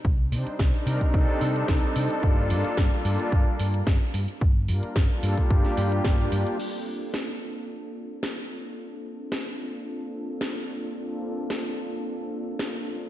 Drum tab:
CC |----------------|----------------|----------------|x---------------|
HH |x-oxx-oxx-oxo-ox|x-oxx-oxx-oxx-ox|x-oxx-oxx-oxo-ox|----------------|
SD |----o-------o---|----o-------o---|----o----o--o---|----o-------o---|
BD |o---o--oo---o---|o---o---o---o---|o---o--oo---o---|----------------|

CC |----------------|----------------|
HH |----------------|----------------|
SD |----o-------o---|----o-------o---|
BD |----------------|----------------|